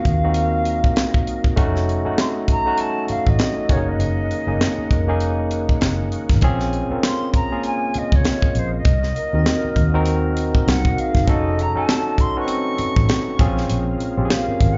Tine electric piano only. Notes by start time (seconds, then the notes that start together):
Already playing: A#3 C4 D#4 F4 F#4
0.24 A#3 C4 D#4 F#4
1.56 A3 C#4 D#4 F#4
2.05 A3 C#4 D#4 F#4
2.66 A3 C#4 D#4 F#4
3.68 A#3 C#4 D#4 F#4
3.77 G#4
4.47 A#3 C#4 D#4 G#4
5.08 A#3 C#4 D#4 G#4
6.43 C4 C#4 F4 G#4
6.91 C4 C#4 F4 A#4
7.51 A#3 C#4 F4 G#4
9.34 C4 D#4 F#4 A#4
9.94 C4 D#4 F#4 A#4
11.28 C#4 D#4 F#4 A4
11.75 C#4 D#4 F#4 A4
12.37 C#4 D#4 F#4 B4
12.44 C4
13.39 C4 C#4 F4 G#4
14.17 C4 C#4 F4 G4
14.25 G#4